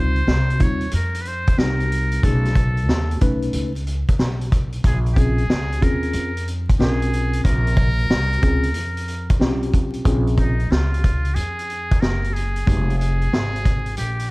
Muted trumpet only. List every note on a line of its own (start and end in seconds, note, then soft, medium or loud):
0.00 0.64 C5 loud
0.62 0.94 C#5 medium
0.95 1.23 A#4 medium
1.21 1.29 B4 medium
1.28 1.60 C5 loud
1.59 2.25 A#4 medium
2.24 3.21 A4 medium
4.86 4.98 G#4 medium
5.13 5.20 G4 medium
5.19 5.85 G#4 medium
5.83 6.48 A#4 medium
6.79 7.41 G#4 medium
7.44 9.36 A#4 loud
10.39 10.73 D#4 medium
10.71 11.36 F4 medium
11.35 12.02 G#4 medium
12.01 12.34 A#4 medium
12.33 12.97 G#4 medium
12.98 13.93 G#4 loud
13.97 14.31 G4 medium